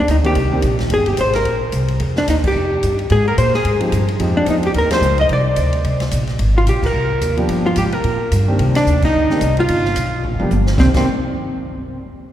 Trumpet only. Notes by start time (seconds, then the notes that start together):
0.09 D#4
0.24 G4
0.91 G#4
1.06 G4
1.17 C5
1.34 A#4
2.16 D4
2.28 D#4
2.44 G4
3.10 G#4
3.28 A#4
3.38 C5
3.56 G#4
4.38 D4
4.48 D#4
4.63 G4
4.75 A#4
4.91 C5
5.19 D#5
5.32 D5
6.56 F4
6.68 G4
6.84 A#4
7.66 F4
7.77 G4
7.93 A#4
8.76 D4
9.04 D#4
9.59 F4
10.79 C4
10.96 C4